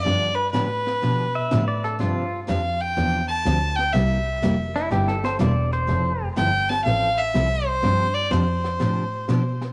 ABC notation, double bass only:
X:1
M:4/4
L:1/8
Q:"Swing" 1/4=124
K:Gmix
V:1 name="Double bass" clef=bass
G,,2 A,,2 B,, B,, A,,2 | G,,2 F,,2 E,,2 D,,2 | C,,2 F,,,2 G,,,2 E,,,2 | F,,, F,,, G,,,2 A,,,2 C,,2 |
G,,2 F,,2 A,,2 B,,2 |]